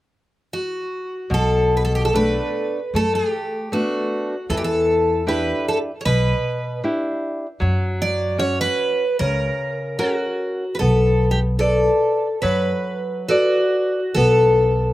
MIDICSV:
0, 0, Header, 1, 4, 480
1, 0, Start_track
1, 0, Key_signature, 2, "minor"
1, 0, Tempo, 808625
1, 772, Time_signature, 4, 2, 24, 8
1, 1744, Tempo, 780234
1, 5104, Tempo, 801068
1, 7024, Tempo, 847458
1, 8909, End_track
2, 0, Start_track
2, 0, Title_t, "Twelve-string acoustic guitar"
2, 0, Program_c, 0, 25
2, 316, Note_on_c, 0, 66, 60
2, 792, Note_off_c, 0, 66, 0
2, 795, Note_on_c, 0, 69, 69
2, 1037, Note_off_c, 0, 69, 0
2, 1050, Note_on_c, 0, 71, 60
2, 1094, Note_off_c, 0, 71, 0
2, 1096, Note_on_c, 0, 69, 62
2, 1152, Note_off_c, 0, 69, 0
2, 1158, Note_on_c, 0, 67, 64
2, 1210, Note_off_c, 0, 67, 0
2, 1217, Note_on_c, 0, 69, 68
2, 1267, Note_off_c, 0, 69, 0
2, 1279, Note_on_c, 0, 71, 78
2, 1757, Note_off_c, 0, 71, 0
2, 1759, Note_on_c, 0, 69, 74
2, 1873, Note_off_c, 0, 69, 0
2, 1875, Note_on_c, 0, 67, 59
2, 2229, Note_off_c, 0, 67, 0
2, 2231, Note_on_c, 0, 66, 62
2, 2679, Note_off_c, 0, 66, 0
2, 2705, Note_on_c, 0, 69, 74
2, 2742, Note_off_c, 0, 69, 0
2, 2750, Note_on_c, 0, 67, 62
2, 2788, Note_off_c, 0, 67, 0
2, 2793, Note_on_c, 0, 69, 68
2, 3163, Note_off_c, 0, 69, 0
2, 3188, Note_on_c, 0, 71, 72
2, 3411, Note_off_c, 0, 71, 0
2, 3434, Note_on_c, 0, 69, 63
2, 3486, Note_off_c, 0, 69, 0
2, 3633, Note_on_c, 0, 73, 51
2, 3658, Note_off_c, 0, 73, 0
2, 3661, Note_on_c, 0, 71, 74
2, 4114, Note_off_c, 0, 71, 0
2, 4869, Note_on_c, 0, 74, 80
2, 5099, Note_off_c, 0, 74, 0
2, 5101, Note_on_c, 0, 73, 80
2, 5224, Note_off_c, 0, 73, 0
2, 5229, Note_on_c, 0, 71, 80
2, 5577, Note_off_c, 0, 71, 0
2, 5579, Note_on_c, 0, 70, 83
2, 6056, Note_on_c, 0, 66, 68
2, 6079, Note_off_c, 0, 70, 0
2, 6509, Note_off_c, 0, 66, 0
2, 6511, Note_on_c, 0, 71, 55
2, 6534, Note_off_c, 0, 71, 0
2, 6537, Note_on_c, 0, 69, 71
2, 6835, Note_off_c, 0, 69, 0
2, 6848, Note_on_c, 0, 67, 62
2, 6893, Note_off_c, 0, 67, 0
2, 7015, Note_on_c, 0, 69, 66
2, 7464, Note_off_c, 0, 69, 0
2, 7485, Note_on_c, 0, 71, 62
2, 7976, Note_on_c, 0, 66, 65
2, 8200, Note_off_c, 0, 71, 0
2, 8464, Note_on_c, 0, 69, 75
2, 8481, Note_off_c, 0, 66, 0
2, 8909, Note_off_c, 0, 69, 0
2, 8909, End_track
3, 0, Start_track
3, 0, Title_t, "Nylon-string guitar"
3, 0, Program_c, 1, 24
3, 771, Note_on_c, 1, 47, 50
3, 1246, Note_off_c, 1, 47, 0
3, 1269, Note_on_c, 1, 57, 35
3, 1272, Note_on_c, 1, 59, 34
3, 1275, Note_on_c, 1, 62, 43
3, 1651, Note_off_c, 1, 57, 0
3, 1652, Note_off_c, 1, 59, 0
3, 1654, Note_off_c, 1, 62, 0
3, 1750, Note_on_c, 1, 57, 51
3, 2215, Note_off_c, 1, 57, 0
3, 2225, Note_on_c, 1, 57, 40
3, 2232, Note_on_c, 1, 62, 43
3, 2233, Note_on_c, 1, 59, 34
3, 2605, Note_off_c, 1, 57, 0
3, 2609, Note_off_c, 1, 59, 0
3, 2610, Note_off_c, 1, 62, 0
3, 2702, Note_on_c, 1, 52, 53
3, 3169, Note_off_c, 1, 52, 0
3, 3177, Note_on_c, 1, 62, 39
3, 3180, Note_on_c, 1, 64, 37
3, 3183, Note_on_c, 1, 67, 41
3, 3565, Note_off_c, 1, 62, 0
3, 3567, Note_off_c, 1, 64, 0
3, 3569, Note_off_c, 1, 67, 0
3, 3662, Note_on_c, 1, 47, 56
3, 4125, Note_off_c, 1, 47, 0
3, 4142, Note_on_c, 1, 62, 40
3, 4145, Note_on_c, 1, 64, 38
3, 4145, Note_on_c, 1, 67, 43
3, 4524, Note_off_c, 1, 62, 0
3, 4524, Note_off_c, 1, 64, 0
3, 4525, Note_off_c, 1, 67, 0
3, 4612, Note_on_c, 1, 54, 55
3, 5084, Note_off_c, 1, 54, 0
3, 5094, Note_on_c, 1, 61, 41
3, 5097, Note_on_c, 1, 66, 37
3, 5101, Note_on_c, 1, 73, 44
3, 5481, Note_off_c, 1, 61, 0
3, 5483, Note_off_c, 1, 66, 0
3, 5485, Note_off_c, 1, 73, 0
3, 5584, Note_on_c, 1, 49, 49
3, 6053, Note_off_c, 1, 49, 0
3, 6056, Note_on_c, 1, 61, 41
3, 6056, Note_on_c, 1, 66, 36
3, 6060, Note_on_c, 1, 70, 48
3, 6440, Note_off_c, 1, 66, 0
3, 6441, Note_off_c, 1, 61, 0
3, 6442, Note_off_c, 1, 70, 0
3, 6543, Note_on_c, 1, 59, 57
3, 7008, Note_off_c, 1, 59, 0
3, 7018, Note_on_c, 1, 69, 36
3, 7020, Note_on_c, 1, 71, 36
3, 7024, Note_on_c, 1, 74, 41
3, 7394, Note_off_c, 1, 69, 0
3, 7396, Note_off_c, 1, 71, 0
3, 7397, Note_off_c, 1, 74, 0
3, 7489, Note_on_c, 1, 54, 45
3, 7963, Note_off_c, 1, 54, 0
3, 7980, Note_on_c, 1, 69, 37
3, 7984, Note_on_c, 1, 71, 32
3, 7986, Note_on_c, 1, 74, 41
3, 8371, Note_off_c, 1, 69, 0
3, 8372, Note_off_c, 1, 71, 0
3, 8374, Note_off_c, 1, 74, 0
3, 8475, Note_on_c, 1, 59, 54
3, 8909, Note_off_c, 1, 59, 0
3, 8909, End_track
4, 0, Start_track
4, 0, Title_t, "Upright bass"
4, 0, Program_c, 2, 32
4, 777, Note_on_c, 2, 35, 71
4, 1406, Note_off_c, 2, 35, 0
4, 1743, Note_on_c, 2, 42, 69
4, 1902, Note_off_c, 2, 42, 0
4, 2703, Note_on_c, 2, 40, 74
4, 3329, Note_off_c, 2, 40, 0
4, 3663, Note_on_c, 2, 35, 73
4, 3819, Note_off_c, 2, 35, 0
4, 4622, Note_on_c, 2, 42, 76
4, 5251, Note_off_c, 2, 42, 0
4, 5586, Note_on_c, 2, 37, 69
4, 5742, Note_off_c, 2, 37, 0
4, 6550, Note_on_c, 2, 35, 74
4, 7172, Note_off_c, 2, 35, 0
4, 7494, Note_on_c, 2, 42, 66
4, 7649, Note_off_c, 2, 42, 0
4, 8470, Note_on_c, 2, 35, 71
4, 8909, Note_off_c, 2, 35, 0
4, 8909, End_track
0, 0, End_of_file